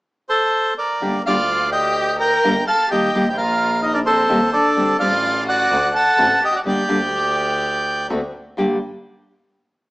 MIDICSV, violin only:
0, 0, Header, 1, 2, 480
1, 0, Start_track
1, 0, Key_signature, -2, "minor"
1, 0, Tempo, 476190
1, 1015, Time_signature, 4, 2, 24, 8
1, 2930, Tempo, 468750
1, 7250, Tempo, 480769
1, 10022, End_track
2, 0, Start_track
2, 0, Title_t, "Violin"
2, 0, Program_c, 0, 40
2, 1272, Note_on_c, 0, 65, 73
2, 1713, Note_off_c, 0, 65, 0
2, 1744, Note_on_c, 0, 67, 83
2, 2185, Note_off_c, 0, 67, 0
2, 2209, Note_on_c, 0, 70, 77
2, 2656, Note_off_c, 0, 70, 0
2, 2690, Note_on_c, 0, 69, 70
2, 2913, Note_off_c, 0, 69, 0
2, 2919, Note_on_c, 0, 67, 70
2, 3304, Note_off_c, 0, 67, 0
2, 3330, Note_on_c, 0, 67, 45
2, 3392, Note_off_c, 0, 67, 0
2, 3398, Note_on_c, 0, 65, 61
2, 3846, Note_off_c, 0, 65, 0
2, 3880, Note_on_c, 0, 63, 69
2, 3994, Note_off_c, 0, 63, 0
2, 4000, Note_on_c, 0, 62, 52
2, 4055, Note_off_c, 0, 62, 0
2, 4120, Note_on_c, 0, 60, 59
2, 4565, Note_off_c, 0, 60, 0
2, 4607, Note_on_c, 0, 62, 74
2, 5050, Note_off_c, 0, 62, 0
2, 5076, Note_on_c, 0, 65, 77
2, 5524, Note_off_c, 0, 65, 0
2, 5553, Note_on_c, 0, 66, 82
2, 6004, Note_off_c, 0, 66, 0
2, 6034, Note_on_c, 0, 69, 72
2, 6487, Note_off_c, 0, 69, 0
2, 6526, Note_on_c, 0, 67, 67
2, 6623, Note_off_c, 0, 67, 0
2, 6629, Note_on_c, 0, 66, 62
2, 6687, Note_off_c, 0, 66, 0
2, 6768, Note_on_c, 0, 67, 65
2, 8180, Note_off_c, 0, 67, 0
2, 10022, End_track
0, 0, End_of_file